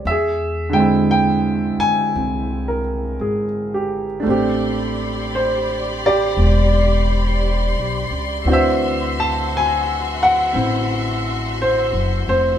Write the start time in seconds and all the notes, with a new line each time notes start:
Already playing: D5
0.05 E2 E5
0.11 G#4
0.69 D3 G#3 G5
0.76 C4 E4
1.11 G5
1.78 G#5, muted upright bass stroke
2.15 C2
2.68 A#4
3.19 G#1 G#4
3.74 G4
4.20 A3 D4
4.26 A1 C4 G4 D5 B5 C6
4.30 G4
5.35 C5
6.06 G4 D5
6.37 E1
7.76 B1
8.10 C#2
8.45 D2 E3 C4 D4 F#4 E5
8.52 C5 E5
9.20 A5
9.57 G#5
10.23 F#5
10.53 A1 C4 E4
11.62 C5
11.92 F#1
12.28 F1 C5